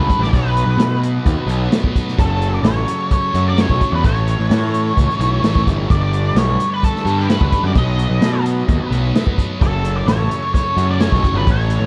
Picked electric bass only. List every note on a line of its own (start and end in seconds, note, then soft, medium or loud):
0.19 0.29 A1 medium
0.33 0.63 B1 medium
0.66 0.76 B1 medium
0.77 1.18 B2 medium
1.26 1.35 D#2 loud
1.46 1.67 B1 medium
2.18 2.59 F#1 medium
2.63 2.84 A1 loud
3.34 3.65 F#2 medium
3.70 3.79 B1 medium
3.92 4.02 E2 medium
4.04 4.34 A1 medium
4.39 4.49 A1 medium
4.50 4.91 A2 medium
4.97 5.07 C#2 medium
5.19 5.40 B1 medium
5.42 5.64 A1 medium
5.67 5.87 G1 medium
5.90 6.30 G1 medium
6.35 6.56 B1 medium
7.05 7.36 G2 medium
7.41 7.51 C#2 medium
7.63 7.73 F#2 medium
7.76 8.06 B1 medium
8.10 8.20 B1 medium
8.21 8.62 B2 medium
8.68 8.78 D#2 medium
8.91 9.11 B1 medium
9.62 10.02 F#1 medium
10.07 10.27 A1 medium
10.77 11.07 F#2 medium
11.12 11.22 B1 medium
11.33 11.44 G1 medium
11.47 11.77 A1 medium
11.80 11.86 A1 medium